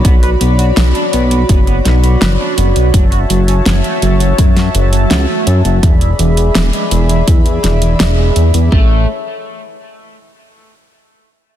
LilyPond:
<<
  \new Staff \with { instrumentName = "Analog synth pad" } { \time 4/4 \key a \major \tempo 4 = 83 << { <cis'' d'' b''>1 | <cis'' e'' a''>1 | <d'' e'' b''>1 | <a' cis'' e''>8 r2. r8 | } \\ { fis'1~ | fis'1 | gis'1 | r1 | } >> }
  \new Staff \with { instrumentName = "Overdriven electric guitar" } { \time 4/4 \key a \major b16 b'16 b16 fis'16 b16 d'16 b16 b16 b16 b16 b16 b16 b'16 d'16 b16 b16 | fis16 fis'16 fis16 cis'16 fis16 a16 fis16 fis16 fis16 fis16 fis16 fis16 fis'16 a16 fis16 fis16 | e16 e'16 e16 b16 e16 gis16 e16 e16 e16 e16 e16 e16 e'16 gis16 e16 e16 | a8 r2. r8 | }
  \new Staff \with { instrumentName = "Analog synth bass" } { \clef bass \time 4/4 \key a \major b,,8 b,,8 b,,16 r16 b,,8 fis,,8 b,,8 fis,,16 r16 fis,,16 b,,16 | fis,,8 fis,,8 fis,,16 r16 fis,,8 fis,8 fis,,8 cis,16 r16 fis,16 fis,,16 | e,,8 e,,8 e,,16 r16 e,,8 e,8 e,,8 e,,8 e,16 e,16 | a,,8 r2. r8 | }
  \new DrumStaff \with { instrumentName = "Drums" } \drummode { \time 4/4 <hh bd>16 hh16 hh16 hh16 <hh sn>16 hh16 hh16 hh16 <hh bd>16 hh16 <hh sn>16 hh16 <hh sn>8 hh16 hh16 | <hh bd>16 hh16 hh16 hh16 <hh sn>16 hh16 hh16 hh16 <hh bd>16 <hh sn>16 hh16 hh16 <hh sn>8 hh16 hh16 | <hh bd>16 hh16 hh16 hh16 <hh sn>16 hh16 hh16 hh16 <hh bd>16 hh16 <hh sn>16 hh16 <hh sn>8 hh16 hh16 | bd4 r4 r4 r4 | }
>>